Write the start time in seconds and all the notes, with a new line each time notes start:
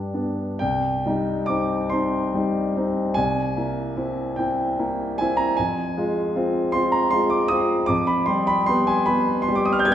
Already playing: G2 G3 D4 G4 D5 G5
0.14 B3 D4
0.59 C2 G5
1.06 G3 D#4
1.46 C4 D#4 D6
1.90 C4 D#4 C6
2.34 G3 D#4
2.76 C4 D#4
3.14 C2 G#5
3.57 A#3 E4
3.97 C4 E4
4.36 C4 E4 G5
4.79 A#3 E4
5.18 C4 E4 G#5
5.37 A#5
5.57 F2 G#5
5.97 G#3 F4
6.36 C4 F4
6.72 C4 F4 C6
6.92 A#5
7.11 G#3 F4 C6
7.30 D6
7.48 C4 F4 D#6
7.86 F2 D6
8.07 B5
8.26 G3 G4 C6
8.47 B5
8.66 B3 G4 C6
8.87 G#5
9.06 B3 G4 B5
9.42 C6
9.48 G3 G4
9.55 D6
9.65 D#6
9.73 F6
9.79 G6
9.85 B3 G4 G#6